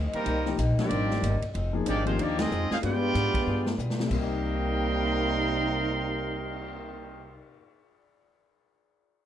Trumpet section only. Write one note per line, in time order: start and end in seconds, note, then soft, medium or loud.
0.14 0.55 G3 medium
0.14 0.55 C4 medium
0.14 0.56 D#4 medium
0.14 0.55 A#4 loud
0.79 1.39 C4 medium
0.79 1.39 G4 medium
0.79 1.38 A#4 medium
0.79 1.39 D5 medium
1.88 2.06 A#3 medium
1.88 2.06 D#4 medium
1.88 2.06 G4 medium
1.88 2.05 D5 medium
2.06 2.18 G#3 medium
2.06 2.18 D#4 medium
2.06 2.18 F4 medium
2.06 2.18 C5 medium
2.20 2.39 A#3 medium
2.20 2.39 D#4 medium
2.20 2.39 G4 medium
2.20 2.39 D5 medium
2.40 2.71 C4 medium
2.40 2.71 F4 medium
2.40 2.70 G#4 medium
2.40 2.71 D#5 loud
2.71 2.77 D#4 medium
2.71 2.77 G#4 medium
2.71 2.77 C5 medium
2.71 2.77 F5 loud
2.84 3.76 F4 loud
2.84 3.76 B4 medium
2.84 3.76 D5 medium
2.84 3.76 G5 loud
4.12 7.40 A#4 medium
4.12 7.40 D#5 loud
4.12 7.40 G5 medium
4.12 7.40 C6 loud